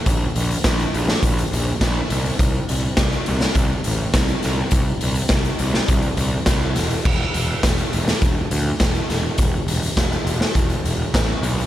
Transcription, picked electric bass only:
0.06 0.25 A#1 medium
0.36 0.55 A#1 medium
0.65 0.83 A#1 medium
0.94 1.13 A#1 medium
1.23 1.41 A#1 medium
1.52 1.71 A#1 medium
1.81 2.00 A#1 loud
2.11 2.29 C2 loud
2.39 2.58 C2 medium
2.70 2.88 C2 loud
2.98 3.16 C2 medium
3.28 3.46 C2 loud
3.55 3.74 C2 medium
3.86 4.04 A1 medium
4.14 4.33 C2 medium
4.45 4.63 C2 medium
4.72 4.91 C2 medium
5.03 5.21 C2 medium
5.30 5.49 C2 medium
5.60 5.78 C2 medium
5.89 6.07 C2 medium
6.17 6.36 C2 medium
6.46 6.78 C2 medium
6.76 6.95 E1 medium
7.05 7.24 E1 medium
7.35 7.54 E1 medium
7.63 7.82 E1 loud
7.94 8.12 E1 medium
8.22 8.41 E1 medium
8.52 8.70 D2 medium
8.81 8.99 E1 loud
9.10 9.29 E1 medium
9.39 9.57 E1 medium
9.67 9.86 E1 loud
9.97 10.16 E1 loud
10.25 10.44 E1 medium
10.56 10.74 E1 medium
10.84 11.03 E1 medium
11.14 11.33 A1 loud
11.42 11.61 B1 loud

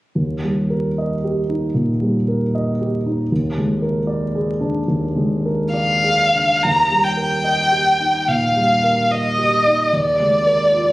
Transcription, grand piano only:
0.15 1.71 D#2 soft
0.43 0.86 G3 soft
0.70 1.12 A#4 soft
0.98 1.39 D#5 soft
1.24 1.65 G4 soft
1.49 1.90 D#4 soft
1.74 2.16 A#2 soft
2.01 2.43 G3 soft
2.28 2.69 A#4 soft
2.55 2.96 D#5 soft
2.81 3.21 G4 soft
3.06 3.31 D#4 soft
3.32 4.84 D#2 soft
3.57 3.98 G#3 soft
3.82 4.23 A#4 soft
4.07 4.50 D5 soft
4.35 4.78 G#4 soft
4.61 5.05 D4 soft
4.88 6.59 D#2 soft
5.16 5.62 G#3 soft
5.45 5.92 A#4 soft
5.73 6.23 D5 soft
6.04 6.52 G#4 soft
6.35 6.64 D4 soft
6.64 8.25 D#2 soft
6.90 7.34 G3 soft
7.17 7.61 A#4 soft
7.44 7.89 D#5 soft
7.72 8.17 G4 soft
8.00 8.45 D#4 soft
8.28 8.72 A#2 soft
8.55 9.00 G3 soft
8.84 9.28 A#4 soft
9.11 9.55 D#5 soft
9.38 9.82 G4 soft
9.67 9.94 D#4 soft
9.93 10.92 D#2 soft
10.20 10.63 G#3 soft
10.46 10.89 A#4 soft
10.72 10.92 F4 soft

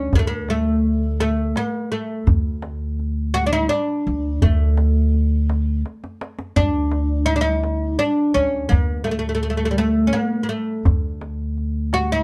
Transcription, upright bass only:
0.00 0.11 D2 medium
0.13 1.52 D2 medium
2.27 3.66 D2 medium
4.07 4.40 D2 medium
4.43 5.81 D2 medium
6.56 7.95 D2 medium
8.35 8.69 D2 medium
8.71 10.10 D2 medium
10.86 12.23 D2 medium

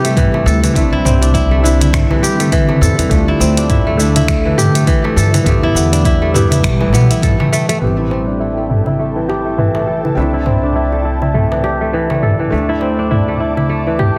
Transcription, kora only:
0.00 0.15 E3 medium
0.00 0.49 C4 medium
0.00 0.55 D4 medium
0.00 0.92 E4 medium
0.00 1.29 G4 loud
0.05 0.33 A3 medium
0.17 0.62 E3 loud
0.34 0.75 A3 medium
0.46 1.78 A4 loud
0.63 0.81 E3 medium
0.76 1.51 A3 medium
0.93 1.34 E4 loud
1.05 2.85 C4 medium
1.22 2.90 D4 medium
1.34 1.63 E4 loud
1.51 1.93 A3 medium
1.64 1.80 E4 medium
1.81 3.28 E4 medium
1.94 2.39 A3 medium
2.11 2.51 E3 medium
2.23 3.64 G4 loud
2.40 2.69 A3 medium
2.52 2.98 E3 loud
2.69 3.11 A3 medium
2.82 4.13 A4 loud
2.99 3.16 E3 medium
3.11 3.86 A3 medium
3.28 3.69 E4 loud
3.40 5.20 C4 medium
3.57 5.25 D4 medium
3.70 3.99 E4 loud
3.87 4.28 A3 medium
3.99 4.16 E4 medium
4.16 5.63 E4 medium
4.29 4.75 A3 medium
4.46 4.86 E3 medium
4.58 5.99 G4 loud
4.75 5.04 A3 medium
4.87 5.33 E3 loud
5.04 5.46 A3 medium
5.17 6.49 A4 loud
5.34 5.51 E3 medium
5.46 6.21 A3 medium
5.63 6.05 E4 loud
5.76 6.93 B3 medium
5.93 7.61 D4 medium
6.05 6.34 E4 loud
6.22 6.63 A3 medium
6.34 6.51 E4 medium
6.51 7.10 E4 medium
6.64 7.39 A3 medium
6.81 7.87 E3 medium
6.94 8.17 B3 loud
7.11 7.98 E4 medium
7.23 8.55 A4 medium
7.40 7.52 A3 medium
7.53 7.69 A3 loud
7.69 7.81 A3 loud
7.81 8.57 A3 medium
7.98 8.40 E4 medium
8.11 9.91 C4 medium
8.27 9.95 D4 medium
8.40 8.69 E4 medium
8.57 8.99 A3 medium
8.70 8.86 E4 medium
8.87 10.33 E4 medium
8.99 9.45 A3 medium
9.16 9.57 E3 medium
9.29 10.70 G4 medium
9.46 9.75 A3 medium
9.58 10.03 E3 medium
9.75 10.17 A3 medium
9.87 11.19 A4 medium
10.04 10.22 E3 medium
10.17 10.92 A3 medium
10.34 10.75 E4 medium
10.46 12.26 C4 medium
10.63 12.31 D4 medium
10.76 11.04 E4 medium
10.92 11.34 A3 medium
11.05 11.22 E4 medium
11.22 12.69 E4 medium
11.34 11.80 A3 medium
11.51 11.92 E3 medium
11.64 13.05 G4 medium
11.81 12.10 A3 medium
11.93 12.38 E3 medium
12.10 12.52 A3 medium
12.23 13.54 A4 medium
12.40 12.57 E3 medium
12.52 13.28 A3 medium
12.69 13.10 E4 medium
12.82 14.18 C4 medium
12.99 14.18 D4 medium
13.11 13.40 E4 medium
13.28 13.69 A3 medium
13.40 13.57 E4 medium
13.57 14.18 E4 medium
13.69 14.16 A3 medium
13.87 14.18 E3 medium
13.99 14.18 G4 medium

